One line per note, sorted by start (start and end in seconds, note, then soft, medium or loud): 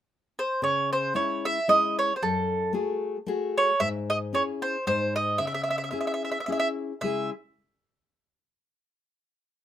0.39 0.61 C5 medium
0.62 1.14 C#3 soft
0.62 0.92 C#5 medium
0.93 1.14 C5 medium
1.14 1.57 G#3 soft
1.14 1.57 C#4 soft
1.14 1.58 E4 soft
1.14 1.45 C#5 medium
1.45 1.67 E5 medium
1.68 2.11 G#3 soft
1.68 2.11 C#4 soft
1.68 2.11 E4 soft
1.68 1.96 D#5 medium
1.99 2.15 C#5 medium
2.16 2.22 C5 soft
2.22 2.74 F#2 medium
2.22 2.72 A4 medium
2.73 3.16 A3 soft
2.73 3.17 F#4 soft
2.73 3.17 G#4 soft
3.26 3.69 A3 soft
3.26 3.70 F#4 soft
3.26 3.70 G#4 medium
3.58 3.79 C#5 medium
3.80 4.32 G#2 medium
3.80 3.88 E5 medium
4.10 4.16 D#5 medium
4.33 4.75 C#4 soft
4.33 4.76 E4 soft
4.33 4.76 G#4 soft
4.33 4.42 C#5 medium
4.62 4.84 C5 medium
4.87 5.38 G#2 medium
4.87 5.14 C5 medium
5.16 5.38 D#5 medium
5.38 5.92 C#3 medium
5.38 5.46 E5 medium
5.47 5.53 E5 soft
5.54 5.62 E5 medium
5.63 5.69 E5 soft
5.70 5.77 E5 medium
5.78 5.83 E5 soft
5.84 5.90 E5 soft
5.91 6.36 C#4 soft
5.91 6.37 E4 soft
5.91 6.37 G#4 soft
5.91 5.98 E5 soft
6.01 6.06 E5 soft
6.07 6.13 E5 soft
6.14 6.22 E5 soft
6.25 6.30 E5 soft
6.31 6.37 E5 soft
6.40 6.45 E5 soft
6.46 6.92 C#4 soft
6.46 6.92 E4 soft
6.46 6.92 G#4 soft
6.46 6.51 E5 medium
6.52 6.58 E5 soft
6.60 6.67 E5 medium
7.01 7.30 C#3 soft
7.01 7.30 G#3 soft
7.01 7.30 C#4 soft
7.01 7.31 E4 soft
7.01 7.31 G#4 soft
7.01 7.29 E5 medium